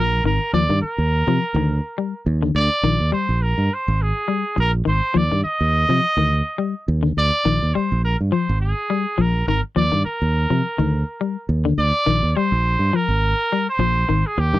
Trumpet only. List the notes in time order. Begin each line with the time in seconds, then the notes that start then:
Already playing: A#4
0.26 A#4
0.54 D5
0.82 A#4
2.56 D5
3.13 C5
3.42 A#4
3.74 C5
4.02 G#4
4.60 A#4
4.88 C5
5.17 D5
5.44 D#5
7.18 D5
7.75 C5
8.05 A#4
8.32 C5
8.61 G#4
9.21 A#4
9.48 A#4
9.77 D5
10.06 A#4
11.79 D5
12.36 C5
12.95 A#4
13.69 C5
14.27 G#4
14.39 G4